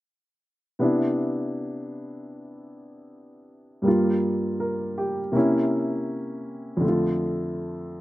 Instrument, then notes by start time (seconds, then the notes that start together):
grand piano
0.79 C3 B3 D4 E4
3.82 G2 G3 A#3
3.87 F4
4.60 A#4
4.98 G4
5.32 C3 A#3 C#4
5.37 E4
6.77 F2 D3
6.84 A3 F4